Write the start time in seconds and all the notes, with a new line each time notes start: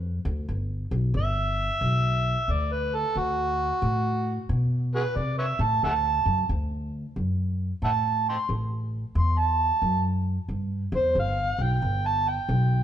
Already playing: F2
0.25 D2
0.49 G1
0.91 B1
1.14 G1 E5
1.81 B1
2.48 D2 D5
2.72 B4
2.95 A4
3.16 D2 F#4
3.82 A2
4.49 B2
4.95 F#4 G#4 B4
5.16 C3 D5
5.39 B4 C#5 E5
5.59 A2 A5
5.83 D2 E5 F#5 A5
6.26 F#2
6.49 D2
7.16 F#2
7.82 A2 E5 F#5 A5
8.29 G5 A5 C6
8.49 A1
9.15 E2 C6
9.38 A5
9.82 F#2
10.48 G2
10.92 E2 C5
11.15 G1
11.19 F5
11.58 B1
11.63 G5
11.82 G1
12.07 A5
12.28 G5
12.49 B1